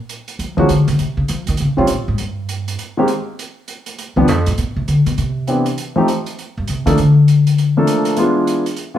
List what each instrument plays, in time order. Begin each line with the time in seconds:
0.09 closed hi-hat
0.28 closed hi-hat
0.39 upright bass F3, closed hi-hat
0.57 upright bass D#3, grand piano F3 G#3 A#3 C#4 F#4
0.69 upright bass D3, closed hi-hat
0.88 upright bass C#3, closed hi-hat
0.99 upright bass C3, closed hi-hat
1.17 upright bass C#3
1.28 upright bass F3, closed hi-hat
1.47 upright bass D#3, closed hi-hat
1.57 upright bass C#3, closed hi-hat
1.77 grand piano D#3 G3 C4 C#4 F4
1.87 upright bass A#2, closed hi-hat
2.08 upright bass G#2
2.18 upright bass G2, closed hi-hat
2.49 closed hi-hat
2.68 closed hi-hat
2.79 closed hi-hat
2.97 grand piano D#3 G#3 A#3 C4 G4
3.08 closed hi-hat
3.39 closed hi-hat
3.68 closed hi-hat
3.86 closed hi-hat
3.98 closed hi-hat
4.16 upright bass D2, grand piano F3 G3 B3 D4 G4
4.28 upright bass F2, closed hi-hat
4.46 upright bass A2, closed hi-hat
4.58 upright bass B2, closed hi-hat
4.76 upright bass C3
4.88 upright bass D3, closed hi-hat
5.06 upright bass B2, closed hi-hat
5.18 upright bass C3, closed hi-hat
5.47 grand piano E3 B3 C4 D4 G4, closed hi-hat
5.66 closed hi-hat
5.78 closed hi-hat
5.96 grand piano F3 A3 C4 D#4 G4
6.08 closed hi-hat
6.26 closed hi-hat
6.39 closed hi-hat
6.57 upright bass G2
6.67 upright bass C3, closed hi-hat
6.86 upright bass D#3, grand piano F3 A3 A#3 D4 A4, closed hi-hat
6.98 upright bass D3, closed hi-hat
7.28 closed hi-hat
7.47 closed hi-hat
7.58 closed hi-hat
7.77 grand piano F3 A3 A#3 D4 A4
7.87 closed hi-hat
8.05 closed hi-hat
8.16 grand piano E3 G#3 B3 D4 F4, closed hi-hat
8.47 closed hi-hat
8.66 closed hi-hat
8.76 closed hi-hat
8.94 grand piano E3 G#3 B3